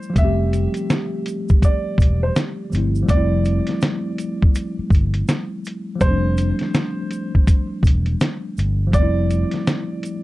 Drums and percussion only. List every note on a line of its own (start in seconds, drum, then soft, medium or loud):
0.03 shaker soft
0.16 kick loud
0.16 closed hi-hat medium
0.16 shaker medium
0.53 closed hi-hat medium
0.53 shaker medium
0.74 closed hi-hat soft
0.74 shaker soft
0.90 snare loud
0.90 closed hi-hat medium
0.90 shaker medium
1.26 closed hi-hat medium
1.26 shaker soft
1.49 kick medium
1.49 shaker soft
1.62 kick medium
1.62 closed hi-hat medium
1.62 shaker medium
1.98 kick medium
1.98 shaker soft
2.02 closed hi-hat medium
2.36 snare loud
2.36 closed hi-hat medium
2.36 shaker medium
2.72 closed hi-hat medium
2.72 shaker soft
2.95 shaker soft
3.08 kick loud
3.08 closed hi-hat medium
3.08 shaker medium
3.45 closed hi-hat medium
3.45 shaker soft
3.67 snare soft
3.67 closed hi-hat medium
3.81 snare loud
3.81 closed hi-hat medium
3.81 shaker medium
4.18 closed hi-hat medium
4.18 shaker medium
4.42 kick medium
4.55 closed hi-hat medium
4.55 shaker medium
4.90 kick loud
4.90 shaker soft
4.95 closed hi-hat medium
5.14 closed hi-hat medium
5.28 snare loud
5.28 closed hi-hat medium
5.28 shaker medium
5.65 closed hi-hat medium
5.65 shaker soft
6.01 kick loud
6.01 closed hi-hat medium
6.01 shaker medium
6.37 closed hi-hat medium
6.37 shaker medium
6.59 snare soft
6.59 closed hi-hat soft
6.74 snare loud
6.74 closed hi-hat medium
6.74 shaker medium
7.11 closed hi-hat medium
7.11 shaker medium
7.35 kick medium
7.47 kick medium
7.47 closed hi-hat medium
7.47 shaker medium
7.83 kick medium
7.83 shaker soft
7.87 closed hi-hat medium
8.06 closed hi-hat soft
8.21 snare loud
8.21 closed hi-hat medium
8.21 shaker medium
8.57 closed hi-hat medium
8.57 shaker soft
8.93 kick loud
8.93 closed hi-hat medium
8.93 shaker medium
9.30 closed hi-hat medium
9.30 shaker soft
9.51 snare soft
9.51 closed hi-hat soft
9.67 snare loud
9.67 closed hi-hat medium
9.67 shaker medium
10.03 closed hi-hat medium
10.03 shaker medium